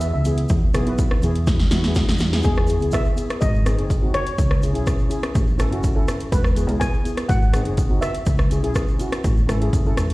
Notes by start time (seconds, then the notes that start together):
Already playing: E2 B3 E4 B4
0.01 E5, closed hi-hat, shaker
0.08 E5
0.13 C#2 E5
0.25 B3 E4 G#4, closed hi-hat, shaker
0.38 closed hi-hat
0.49 E2, kick, closed hi-hat, shaker
0.74 B1 B3 E4 G#4, cross-stick, closed hi-hat, shaker
0.86 B3 E4 B4, closed hi-hat
0.98 kick, closed hi-hat, shaker
1.11 cross-stick
1.22 E2 B3 E4 G#4, closed hi-hat, shaker
1.35 closed hi-hat
1.47 kick, snare, closed hi-hat, shaker
1.60 snare
1.70 E2 B3 E4 F#4, snare, closed hi-hat, shaker
1.84 B3 E4 G#4, snare, closed hi-hat
1.95 kick, snare, closed hi-hat, shaker
2.08 E2, snare
2.18 E2, snare, closed hi-hat, shaker
2.33 B3 E4 G#4, snare, closed hi-hat
2.43 E2 G#4, kick, closed hi-hat, shaker
2.55 cross-stick, shaker
2.67 B3 E4 G#4, closed hi-hat, shaker
2.80 C#2 B3 E4 G#4, closed hi-hat, shaker
2.91 E5, kick, cross-stick, closed hi-hat, shaker
3.05 shaker
3.16 B3 E4 G#4, closed hi-hat, shaker
3.30 cross-stick, closed hi-hat, shaker
3.41 G#1 D#5, kick, closed hi-hat, shaker
3.54 shaker
3.65 C4 D#4 G#4, cross-stick, closed hi-hat, shaker
3.77 F#1 C4 D#4 G#4, closed hi-hat
3.90 kick, closed hi-hat, shaker
4.02 C4 D#4 F#4
4.14 C#5, cross-stick, closed hi-hat
4.26 closed hi-hat, shaker
4.38 C#2, kick, closed hi-hat, shaker
4.51 cross-stick, shaker
4.62 C#4 E4 G#4, closed hi-hat, shaker
4.73 B1 C#4 E4 G#4, closed hi-hat, shaker
4.86 kick, cross-stick, closed hi-hat, shaker
4.99 shaker
5.09 C#4 E4 G#4, closed hi-hat, shaker
5.23 cross-stick, closed hi-hat, shaker
5.35 A1, kick, closed hi-hat, shaker
5.47 shaker
5.58 C#4 E4 A4, cross-stick, closed hi-hat, shaker
5.71 F#1 C#4 E4 F#4, closed hi-hat
5.83 kick, closed hi-hat, shaker
5.95 C#4 E4 A4
6.08 cross-stick, closed hi-hat, shaker
6.20 closed hi-hat, shaker
6.32 E1 B4, kick, closed hi-hat, shaker
6.44 cross-stick, shaker
6.55 B3 E4 G#4, closed hi-hat, shaker
6.67 C#2 B3 E4 G#4, closed hi-hat, shaker
6.80 G#5, kick, cross-stick, closed hi-hat, shaker
6.94 shaker
7.04 B3 E4 G#4, closed hi-hat, shaker
7.17 cross-stick, closed hi-hat, shaker
7.29 G#1 F#5, kick, closed hi-hat, shaker
7.42 shaker
7.53 C4 D#4 G#4, cross-stick, closed hi-hat, shaker
7.65 F#1 C4 D#4 G#4, closed hi-hat
7.77 kick, closed hi-hat, shaker
7.89 C4 D#4 F#4
8.01 E5, cross-stick, closed hi-hat, shaker
8.15 closed hi-hat, shaker
8.26 C#2, kick, closed hi-hat, shaker
8.38 cross-stick, shaker
8.50 C#4 E4 G#4, closed hi-hat, shaker
8.63 B1 C#4 E4 G#4, closed hi-hat
8.75 kick, cross-stick, closed hi-hat, shaker
8.88 shaker
8.99 C#4 E4 F#4, closed hi-hat, shaker
9.12 cross-stick, closed hi-hat, shaker
9.24 A1, kick, closed hi-hat, shaker
9.37 shaker
9.47 G#1 C#4 E4 A4, cross-stick, closed hi-hat, shaker
9.61 C#4 E4 G#4, closed hi-hat
9.73 F#1, kick, closed hi-hat, shaker
9.86 C#4 E4 A4, shaker
9.96 E1, cross-stick, closed hi-hat, shaker
10.10 closed hi-hat